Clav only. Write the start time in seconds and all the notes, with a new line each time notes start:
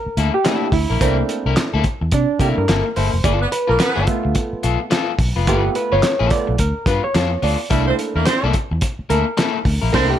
Already playing: A#4
0.34 G4
0.45 A3 A#3 D4 E4
0.73 E4
1.01 A3 A#3 C4 D4 E4
2.14 D4
2.40 A3 A#3 D4 E4 G4
2.58 A#4
2.96 C5
3.24 D5
3.52 B4
3.69 A#4
4.07 A3 B3 F4
5.47 A3 B3 F4 G4
5.76 B4
5.92 C#5
6.31 A3 B3 F4 D5
6.60 A#4
6.87 B4
7.04 C#5
7.43 D5
7.70 A3 A#3 D4 E4
9.10 A#4
9.93 A3 A#3 D4 E4 A#4
10.10 G4